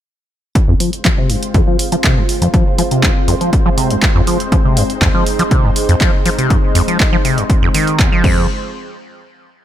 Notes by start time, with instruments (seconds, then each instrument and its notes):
0.55 analog synth pad G#3 C4 F4 C5, kick, closed hi-hat
0.68 acid bass F2
0.80 acid bass F3, open hi-hat
0.93 closed hi-hat
1.05 acid bass F3, kick, clap, closed hi-hat
1.18 acid bass C3
1.30 acid bass F#2, open hi-hat
1.43 closed hi-hat
1.54 acid bass F2, kick, closed hi-hat
1.67 acid bass F3
1.79 open hi-hat
1.92 acid bass F3, closed hi-hat
2.04 acid bass C3, kick, clap, closed hi-hat
2.17 acid bass F#2
2.29 open hi-hat
2.42 acid bass F2, closed hi-hat
2.54 acid bass F3, kick, closed hi-hat
2.78 acid bass F3, open hi-hat
2.91 acid bass C3, closed hi-hat
3.03 acid bass F#2, kick, clap, closed hi-hat
3.28 acid bass F2, open hi-hat
3.41 acid bass F3, closed hi-hat
3.53 kick, closed hi-hat
3.66 acid bass F3
3.78 acid bass C3, open hi-hat
3.90 acid bass F#2, closed hi-hat
4.02 kick, clap, closed hi-hat
4.15 acid bass F2
4.27 acid bass F3, open hi-hat
4.40 closed hi-hat
4.52 acid bass F3, analog synth pad D#4, kick, closed hi-hat
4.65 acid bass C3
4.77 acid bass F#2, open hi-hat
4.90 closed hi-hat
5.02 acid bass F2, kick, clap, closed hi-hat
5.14 acid bass F3
5.26 open hi-hat
5.39 acid bass F3, closed hi-hat
5.51 acid bass C3, kick, closed hi-hat
5.64 acid bass F#2
5.76 open hi-hat
5.89 acid bass F2, closed hi-hat
6.01 acid bass F3, kick, clap, closed hi-hat
6.26 acid bass F3, open hi-hat
6.38 acid bass C3, closed hi-hat
6.50 acid bass F#2, kick, closed hi-hat
6.75 acid bass F2, open hi-hat
6.88 acid bass F3, closed hi-hat
7.00 kick, clap, closed hi-hat
7.13 acid bass F3
7.25 acid bass C3, open hi-hat
7.38 acid bass F#2, closed hi-hat
7.50 kick, closed hi-hat
7.62 acid bass F2
7.74 acid bass D#3, open hi-hat
7.87 closed hi-hat
7.99 acid bass D#2, kick, clap, closed hi-hat
8.12 acid bass F3
8.24 acid bass F2, kick, crash